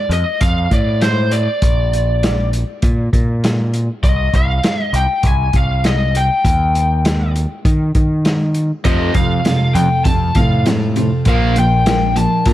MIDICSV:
0, 0, Header, 1, 6, 480
1, 0, Start_track
1, 0, Tempo, 601805
1, 1295, Time_signature, 4, 2, 24, 8
1, 9997, End_track
2, 0, Start_track
2, 0, Title_t, "Lead electric guitar"
2, 0, Program_c, 0, 29
2, 0, Note_on_c, 0, 74, 82
2, 99, Note_off_c, 0, 74, 0
2, 102, Note_on_c, 0, 75, 90
2, 322, Note_off_c, 0, 75, 0
2, 333, Note_on_c, 0, 77, 102
2, 557, Note_off_c, 0, 77, 0
2, 586, Note_on_c, 0, 74, 85
2, 804, Note_off_c, 0, 74, 0
2, 815, Note_on_c, 0, 72, 75
2, 1054, Note_on_c, 0, 74, 81
2, 1062, Note_off_c, 0, 72, 0
2, 1984, Note_off_c, 0, 74, 0
2, 3223, Note_on_c, 0, 75, 82
2, 3469, Note_off_c, 0, 75, 0
2, 3478, Note_on_c, 0, 77, 93
2, 3853, Note_off_c, 0, 77, 0
2, 3853, Note_on_c, 0, 75, 93
2, 3955, Note_on_c, 0, 79, 89
2, 3964, Note_off_c, 0, 75, 0
2, 4195, Note_off_c, 0, 79, 0
2, 4204, Note_on_c, 0, 80, 103
2, 4436, Note_on_c, 0, 77, 78
2, 4439, Note_off_c, 0, 80, 0
2, 4676, Note_off_c, 0, 77, 0
2, 4681, Note_on_c, 0, 75, 78
2, 4918, Note_off_c, 0, 75, 0
2, 4918, Note_on_c, 0, 79, 85
2, 5838, Note_off_c, 0, 79, 0
2, 7062, Note_on_c, 0, 75, 82
2, 7297, Note_off_c, 0, 75, 0
2, 7300, Note_on_c, 0, 77, 76
2, 7773, Note_on_c, 0, 79, 89
2, 7794, Note_off_c, 0, 77, 0
2, 8011, Note_off_c, 0, 79, 0
2, 8014, Note_on_c, 0, 81, 99
2, 8263, Note_on_c, 0, 77, 71
2, 8264, Note_off_c, 0, 81, 0
2, 8484, Note_off_c, 0, 77, 0
2, 9007, Note_on_c, 0, 77, 88
2, 9216, Note_off_c, 0, 77, 0
2, 9244, Note_on_c, 0, 79, 76
2, 9708, Note_on_c, 0, 81, 91
2, 9723, Note_off_c, 0, 79, 0
2, 9944, Note_off_c, 0, 81, 0
2, 9948, Note_on_c, 0, 82, 99
2, 9997, Note_off_c, 0, 82, 0
2, 9997, End_track
3, 0, Start_track
3, 0, Title_t, "Twelve-string acoustic guitar"
3, 0, Program_c, 1, 25
3, 7052, Note_on_c, 1, 41, 70
3, 7054, Note_on_c, 1, 48, 70
3, 7059, Note_on_c, 1, 53, 69
3, 7060, Note_on_c, 1, 57, 62
3, 7065, Note_on_c, 1, 60, 67
3, 7070, Note_on_c, 1, 65, 78
3, 7286, Note_off_c, 1, 65, 0
3, 7296, Note_off_c, 1, 41, 0
3, 7296, Note_on_c, 1, 65, 51
3, 7297, Note_off_c, 1, 60, 0
3, 7298, Note_off_c, 1, 48, 0
3, 7300, Note_off_c, 1, 53, 0
3, 7300, Note_off_c, 1, 57, 0
3, 7306, Note_on_c, 1, 60, 47
3, 7313, Note_on_c, 1, 57, 44
3, 7322, Note_on_c, 1, 53, 38
3, 7533, Note_off_c, 1, 53, 0
3, 7534, Note_on_c, 1, 41, 61
3, 7537, Note_off_c, 1, 57, 0
3, 7538, Note_off_c, 1, 65, 0
3, 7539, Note_off_c, 1, 60, 0
3, 7542, Note_on_c, 1, 48, 69
3, 7543, Note_on_c, 1, 53, 64
3, 7547, Note_on_c, 1, 57, 71
3, 7549, Note_on_c, 1, 60, 75
3, 7555, Note_on_c, 1, 65, 76
3, 7759, Note_off_c, 1, 65, 0
3, 7768, Note_on_c, 1, 65, 49
3, 7774, Note_off_c, 1, 60, 0
3, 7777, Note_off_c, 1, 41, 0
3, 7781, Note_off_c, 1, 48, 0
3, 7782, Note_off_c, 1, 53, 0
3, 7782, Note_off_c, 1, 57, 0
3, 7783, Note_on_c, 1, 60, 44
3, 7791, Note_on_c, 1, 57, 41
3, 7798, Note_on_c, 1, 53, 41
3, 8000, Note_off_c, 1, 53, 0
3, 8010, Note_on_c, 1, 53, 55
3, 8012, Note_off_c, 1, 57, 0
3, 8014, Note_off_c, 1, 65, 0
3, 8021, Note_on_c, 1, 57, 60
3, 8022, Note_off_c, 1, 60, 0
3, 8031, Note_on_c, 1, 60, 59
3, 8040, Note_on_c, 1, 65, 68
3, 8248, Note_off_c, 1, 65, 0
3, 8254, Note_off_c, 1, 53, 0
3, 8258, Note_on_c, 1, 65, 47
3, 8259, Note_off_c, 1, 60, 0
3, 8260, Note_off_c, 1, 57, 0
3, 8269, Note_on_c, 1, 60, 50
3, 8278, Note_on_c, 1, 57, 41
3, 8285, Note_on_c, 1, 53, 39
3, 8497, Note_off_c, 1, 53, 0
3, 8498, Note_off_c, 1, 65, 0
3, 8501, Note_off_c, 1, 57, 0
3, 8501, Note_on_c, 1, 41, 67
3, 8504, Note_off_c, 1, 60, 0
3, 8507, Note_on_c, 1, 53, 67
3, 8508, Note_on_c, 1, 48, 63
3, 8511, Note_on_c, 1, 57, 74
3, 8512, Note_on_c, 1, 60, 65
3, 8519, Note_on_c, 1, 65, 79
3, 8728, Note_off_c, 1, 65, 0
3, 8737, Note_off_c, 1, 60, 0
3, 8737, Note_on_c, 1, 65, 52
3, 8740, Note_off_c, 1, 41, 0
3, 8742, Note_off_c, 1, 53, 0
3, 8743, Note_off_c, 1, 48, 0
3, 8744, Note_off_c, 1, 57, 0
3, 8747, Note_on_c, 1, 60, 47
3, 8760, Note_on_c, 1, 57, 46
3, 8765, Note_on_c, 1, 53, 39
3, 8977, Note_off_c, 1, 53, 0
3, 8977, Note_off_c, 1, 65, 0
3, 8982, Note_off_c, 1, 60, 0
3, 8982, Note_on_c, 1, 46, 75
3, 8987, Note_off_c, 1, 57, 0
3, 8987, Note_on_c, 1, 53, 72
3, 8990, Note_on_c, 1, 58, 71
3, 8995, Note_on_c, 1, 62, 74
3, 8998, Note_on_c, 1, 65, 80
3, 9212, Note_off_c, 1, 65, 0
3, 9220, Note_off_c, 1, 46, 0
3, 9221, Note_on_c, 1, 65, 51
3, 9222, Note_off_c, 1, 53, 0
3, 9223, Note_off_c, 1, 58, 0
3, 9226, Note_off_c, 1, 62, 0
3, 9238, Note_on_c, 1, 62, 49
3, 9248, Note_on_c, 1, 58, 42
3, 9459, Note_off_c, 1, 58, 0
3, 9459, Note_off_c, 1, 65, 0
3, 9464, Note_on_c, 1, 46, 66
3, 9465, Note_on_c, 1, 53, 73
3, 9467, Note_off_c, 1, 62, 0
3, 9469, Note_on_c, 1, 58, 68
3, 9476, Note_on_c, 1, 62, 79
3, 9483, Note_on_c, 1, 65, 69
3, 9695, Note_off_c, 1, 65, 0
3, 9700, Note_off_c, 1, 46, 0
3, 9700, Note_off_c, 1, 53, 0
3, 9702, Note_off_c, 1, 58, 0
3, 9705, Note_on_c, 1, 65, 50
3, 9706, Note_off_c, 1, 62, 0
3, 9716, Note_on_c, 1, 62, 44
3, 9728, Note_on_c, 1, 58, 46
3, 9932, Note_on_c, 1, 53, 63
3, 9933, Note_off_c, 1, 58, 0
3, 9939, Note_off_c, 1, 62, 0
3, 9940, Note_off_c, 1, 65, 0
3, 9943, Note_on_c, 1, 58, 60
3, 9948, Note_on_c, 1, 62, 64
3, 9961, Note_on_c, 1, 65, 71
3, 9997, Note_off_c, 1, 53, 0
3, 9997, Note_off_c, 1, 58, 0
3, 9997, Note_off_c, 1, 62, 0
3, 9997, Note_off_c, 1, 65, 0
3, 9997, End_track
4, 0, Start_track
4, 0, Title_t, "Overdriven electric guitar"
4, 0, Program_c, 2, 29
4, 7056, Note_on_c, 2, 41, 84
4, 7062, Note_on_c, 2, 48, 91
4, 7068, Note_on_c, 2, 53, 86
4, 7284, Note_off_c, 2, 41, 0
4, 7287, Note_off_c, 2, 48, 0
4, 7290, Note_off_c, 2, 53, 0
4, 7302, Note_on_c, 2, 41, 66
4, 7305, Note_on_c, 2, 48, 70
4, 7517, Note_off_c, 2, 41, 0
4, 7519, Note_off_c, 2, 48, 0
4, 7547, Note_on_c, 2, 41, 65
4, 7548, Note_on_c, 2, 48, 74
4, 7760, Note_off_c, 2, 41, 0
4, 7760, Note_off_c, 2, 48, 0
4, 7787, Note_on_c, 2, 41, 57
4, 7791, Note_on_c, 2, 48, 65
4, 7999, Note_off_c, 2, 41, 0
4, 8001, Note_off_c, 2, 48, 0
4, 8025, Note_on_c, 2, 41, 71
4, 8027, Note_on_c, 2, 48, 77
4, 8238, Note_off_c, 2, 41, 0
4, 8239, Note_off_c, 2, 48, 0
4, 8266, Note_on_c, 2, 41, 72
4, 8270, Note_on_c, 2, 48, 71
4, 8478, Note_off_c, 2, 41, 0
4, 8480, Note_off_c, 2, 48, 0
4, 8508, Note_on_c, 2, 41, 66
4, 8509, Note_on_c, 2, 48, 76
4, 8719, Note_off_c, 2, 41, 0
4, 8720, Note_off_c, 2, 48, 0
4, 8745, Note_on_c, 2, 41, 59
4, 8750, Note_on_c, 2, 48, 64
4, 8957, Note_off_c, 2, 41, 0
4, 8960, Note_off_c, 2, 48, 0
4, 8987, Note_on_c, 2, 46, 93
4, 8995, Note_on_c, 2, 53, 83
4, 9001, Note_on_c, 2, 58, 92
4, 9208, Note_off_c, 2, 46, 0
4, 9211, Note_off_c, 2, 53, 0
4, 9214, Note_off_c, 2, 58, 0
4, 9231, Note_on_c, 2, 53, 68
4, 9232, Note_on_c, 2, 46, 75
4, 9439, Note_off_c, 2, 53, 0
4, 9440, Note_off_c, 2, 46, 0
4, 9465, Note_on_c, 2, 46, 60
4, 9467, Note_on_c, 2, 53, 77
4, 9676, Note_off_c, 2, 46, 0
4, 9677, Note_off_c, 2, 53, 0
4, 9702, Note_on_c, 2, 46, 71
4, 9705, Note_on_c, 2, 53, 73
4, 9914, Note_off_c, 2, 46, 0
4, 9916, Note_off_c, 2, 53, 0
4, 9948, Note_on_c, 2, 46, 64
4, 9948, Note_on_c, 2, 53, 73
4, 9997, Note_off_c, 2, 46, 0
4, 9997, Note_off_c, 2, 53, 0
4, 9997, End_track
5, 0, Start_track
5, 0, Title_t, "Picked electric bass"
5, 0, Program_c, 3, 34
5, 76, Note_on_c, 3, 41, 89
5, 183, Note_off_c, 3, 41, 0
5, 330, Note_on_c, 3, 41, 92
5, 532, Note_off_c, 3, 41, 0
5, 566, Note_on_c, 3, 45, 87
5, 1169, Note_off_c, 3, 45, 0
5, 1297, Note_on_c, 3, 34, 84
5, 2096, Note_off_c, 3, 34, 0
5, 2258, Note_on_c, 3, 46, 95
5, 2458, Note_off_c, 3, 46, 0
5, 2496, Note_on_c, 3, 46, 71
5, 3097, Note_off_c, 3, 46, 0
5, 3216, Note_on_c, 3, 36, 83
5, 3417, Note_off_c, 3, 36, 0
5, 3457, Note_on_c, 3, 36, 89
5, 3658, Note_off_c, 3, 36, 0
5, 3934, Note_on_c, 3, 36, 101
5, 4036, Note_off_c, 3, 36, 0
5, 4177, Note_on_c, 3, 36, 101
5, 4379, Note_off_c, 3, 36, 0
5, 4413, Note_on_c, 3, 36, 79
5, 5016, Note_off_c, 3, 36, 0
5, 5144, Note_on_c, 3, 39, 80
5, 5943, Note_off_c, 3, 39, 0
5, 6104, Note_on_c, 3, 51, 94
5, 6303, Note_off_c, 3, 51, 0
5, 6343, Note_on_c, 3, 51, 76
5, 6941, Note_off_c, 3, 51, 0
5, 7060, Note_on_c, 3, 41, 73
5, 7260, Note_off_c, 3, 41, 0
5, 7295, Note_on_c, 3, 41, 89
5, 7497, Note_off_c, 3, 41, 0
5, 7775, Note_on_c, 3, 41, 99
5, 7877, Note_off_c, 3, 41, 0
5, 8020, Note_on_c, 3, 41, 95
5, 8219, Note_off_c, 3, 41, 0
5, 8259, Note_on_c, 3, 45, 83
5, 8857, Note_off_c, 3, 45, 0
5, 8981, Note_on_c, 3, 34, 80
5, 9777, Note_off_c, 3, 34, 0
5, 9940, Note_on_c, 3, 46, 94
5, 9997, Note_off_c, 3, 46, 0
5, 9997, End_track
6, 0, Start_track
6, 0, Title_t, "Drums"
6, 89, Note_on_c, 9, 42, 56
6, 168, Note_off_c, 9, 42, 0
6, 325, Note_on_c, 9, 42, 86
6, 329, Note_on_c, 9, 36, 101
6, 404, Note_off_c, 9, 42, 0
6, 409, Note_off_c, 9, 36, 0
6, 569, Note_on_c, 9, 42, 59
6, 570, Note_on_c, 9, 36, 71
6, 649, Note_off_c, 9, 42, 0
6, 650, Note_off_c, 9, 36, 0
6, 809, Note_on_c, 9, 42, 69
6, 816, Note_on_c, 9, 38, 90
6, 889, Note_off_c, 9, 42, 0
6, 896, Note_off_c, 9, 38, 0
6, 1048, Note_on_c, 9, 42, 55
6, 1128, Note_off_c, 9, 42, 0
6, 1291, Note_on_c, 9, 42, 82
6, 1294, Note_on_c, 9, 36, 93
6, 1371, Note_off_c, 9, 42, 0
6, 1374, Note_off_c, 9, 36, 0
6, 1542, Note_on_c, 9, 42, 50
6, 1622, Note_off_c, 9, 42, 0
6, 1780, Note_on_c, 9, 42, 77
6, 1787, Note_on_c, 9, 38, 102
6, 1859, Note_off_c, 9, 42, 0
6, 1867, Note_off_c, 9, 38, 0
6, 2019, Note_on_c, 9, 42, 55
6, 2099, Note_off_c, 9, 42, 0
6, 2251, Note_on_c, 9, 42, 78
6, 2256, Note_on_c, 9, 36, 114
6, 2331, Note_off_c, 9, 42, 0
6, 2335, Note_off_c, 9, 36, 0
6, 2498, Note_on_c, 9, 36, 77
6, 2500, Note_on_c, 9, 42, 55
6, 2578, Note_off_c, 9, 36, 0
6, 2579, Note_off_c, 9, 42, 0
6, 2742, Note_on_c, 9, 42, 70
6, 2749, Note_on_c, 9, 38, 96
6, 2822, Note_off_c, 9, 42, 0
6, 2829, Note_off_c, 9, 38, 0
6, 2979, Note_on_c, 9, 42, 49
6, 3059, Note_off_c, 9, 42, 0
6, 3218, Note_on_c, 9, 42, 74
6, 3219, Note_on_c, 9, 36, 98
6, 3298, Note_off_c, 9, 42, 0
6, 3299, Note_off_c, 9, 36, 0
6, 3459, Note_on_c, 9, 36, 62
6, 3459, Note_on_c, 9, 42, 50
6, 3538, Note_off_c, 9, 36, 0
6, 3538, Note_off_c, 9, 42, 0
6, 3697, Note_on_c, 9, 42, 70
6, 3704, Note_on_c, 9, 38, 102
6, 3777, Note_off_c, 9, 42, 0
6, 3784, Note_off_c, 9, 38, 0
6, 3938, Note_on_c, 9, 42, 58
6, 4017, Note_off_c, 9, 42, 0
6, 4172, Note_on_c, 9, 42, 82
6, 4177, Note_on_c, 9, 36, 107
6, 4252, Note_off_c, 9, 42, 0
6, 4257, Note_off_c, 9, 36, 0
6, 4413, Note_on_c, 9, 42, 59
6, 4418, Note_on_c, 9, 36, 80
6, 4492, Note_off_c, 9, 42, 0
6, 4497, Note_off_c, 9, 36, 0
6, 4658, Note_on_c, 9, 42, 67
6, 4665, Note_on_c, 9, 38, 90
6, 4738, Note_off_c, 9, 42, 0
6, 4745, Note_off_c, 9, 38, 0
6, 4904, Note_on_c, 9, 42, 54
6, 4984, Note_off_c, 9, 42, 0
6, 5142, Note_on_c, 9, 36, 101
6, 5143, Note_on_c, 9, 42, 87
6, 5221, Note_off_c, 9, 36, 0
6, 5222, Note_off_c, 9, 42, 0
6, 5386, Note_on_c, 9, 42, 55
6, 5466, Note_off_c, 9, 42, 0
6, 5623, Note_on_c, 9, 42, 81
6, 5631, Note_on_c, 9, 38, 102
6, 5703, Note_off_c, 9, 42, 0
6, 5710, Note_off_c, 9, 38, 0
6, 5867, Note_on_c, 9, 42, 56
6, 5947, Note_off_c, 9, 42, 0
6, 6102, Note_on_c, 9, 36, 113
6, 6103, Note_on_c, 9, 42, 77
6, 6182, Note_off_c, 9, 36, 0
6, 6183, Note_off_c, 9, 42, 0
6, 6339, Note_on_c, 9, 42, 51
6, 6341, Note_on_c, 9, 36, 82
6, 6419, Note_off_c, 9, 42, 0
6, 6421, Note_off_c, 9, 36, 0
6, 6580, Note_on_c, 9, 42, 62
6, 6587, Note_on_c, 9, 38, 94
6, 6659, Note_off_c, 9, 42, 0
6, 6667, Note_off_c, 9, 38, 0
6, 6815, Note_on_c, 9, 42, 51
6, 6895, Note_off_c, 9, 42, 0
6, 7057, Note_on_c, 9, 42, 77
6, 7060, Note_on_c, 9, 36, 106
6, 7136, Note_off_c, 9, 42, 0
6, 7139, Note_off_c, 9, 36, 0
6, 7292, Note_on_c, 9, 42, 53
6, 7298, Note_on_c, 9, 36, 62
6, 7372, Note_off_c, 9, 42, 0
6, 7378, Note_off_c, 9, 36, 0
6, 7537, Note_on_c, 9, 42, 70
6, 7545, Note_on_c, 9, 38, 91
6, 7617, Note_off_c, 9, 42, 0
6, 7624, Note_off_c, 9, 38, 0
6, 7778, Note_on_c, 9, 42, 56
6, 7858, Note_off_c, 9, 42, 0
6, 8016, Note_on_c, 9, 42, 84
6, 8019, Note_on_c, 9, 36, 111
6, 8096, Note_off_c, 9, 42, 0
6, 8099, Note_off_c, 9, 36, 0
6, 8253, Note_on_c, 9, 42, 61
6, 8259, Note_on_c, 9, 36, 76
6, 8333, Note_off_c, 9, 42, 0
6, 8338, Note_off_c, 9, 36, 0
6, 8499, Note_on_c, 9, 42, 72
6, 8506, Note_on_c, 9, 38, 91
6, 8579, Note_off_c, 9, 42, 0
6, 8586, Note_off_c, 9, 38, 0
6, 8741, Note_on_c, 9, 42, 53
6, 8821, Note_off_c, 9, 42, 0
6, 8975, Note_on_c, 9, 42, 83
6, 8981, Note_on_c, 9, 36, 104
6, 9055, Note_off_c, 9, 42, 0
6, 9061, Note_off_c, 9, 36, 0
6, 9219, Note_on_c, 9, 42, 56
6, 9299, Note_off_c, 9, 42, 0
6, 9460, Note_on_c, 9, 42, 74
6, 9468, Note_on_c, 9, 38, 102
6, 9540, Note_off_c, 9, 42, 0
6, 9547, Note_off_c, 9, 38, 0
6, 9700, Note_on_c, 9, 42, 58
6, 9780, Note_off_c, 9, 42, 0
6, 9934, Note_on_c, 9, 42, 84
6, 9939, Note_on_c, 9, 36, 102
6, 9997, Note_off_c, 9, 36, 0
6, 9997, Note_off_c, 9, 42, 0
6, 9997, End_track
0, 0, End_of_file